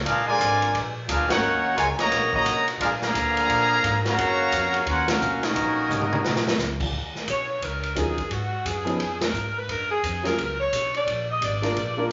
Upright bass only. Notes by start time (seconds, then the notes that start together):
0.06 A#1
0.40 G#1
0.74 A#1
1.08 D2
1.19 A#1
1.31 G#1
1.43 D#2
1.77 C#2
1.98 muted upright bass stroke
2.11 A#1
2.46 B1
2.80 A#1
3.15 D2
3.49 A#2
3.84 G#2
4.18 F#2
4.52 F2
4.86 D#2
5.21 B1
5.55 A#1
5.89 G#1
6.22 A#1
6.57 C#2
6.93 D#2
7.27 B1
7.62 C#2
7.96 D#2
8.18 muted upright bass stroke
8.30 G#2
8.65 F#2
8.99 F2
9.33 G#2
9.68 F#2
10.03 F2
10.38 C#2
10.72 B1
11.07 A#1
11.41 G#1
11.76 A#1